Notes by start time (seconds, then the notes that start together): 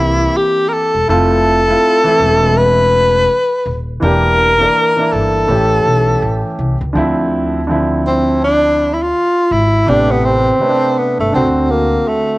Already playing: C2 E3 A#3 C4 E4 G4
0.37 G4
0.69 A#4
0.74 A4
0.95 E1
1.08 F1 A3 C4 E4 F4 A4
1.67 A3 C4 E4 F4
2.03 E3 A3 C4 E4, muted upright bass stroke
2.19 E1
2.57 B4
3.66 D#1
4.00 E1 E3 A#3 D4 A#4
4.04 G4
4.58 E3 A#3 D4 A#4
4.96 E3 A#3 D4 E4
5.13 G1 A4
5.47 A1 E3 A3 C#4
5.51 G4
5.85 B1
6.22 A1
6.59 C2
6.81 C#2
6.93 D2 D3 F3 C4 E4
7.67 D3 F3 C4 E4
8.07 C4
8.44 D4
8.94 E4
9.02 F4
9.51 G#1 E4
9.86 A1 C3 A3 B3 D4 G4
10.11 B3
10.25 C4
10.59 C3 A3 B4
10.63 C#4
10.69 D4
10.98 B3
11.19 G1 A3
11.32 D2 D3 C4 F#4 A4
11.71 A#3
12.08 A3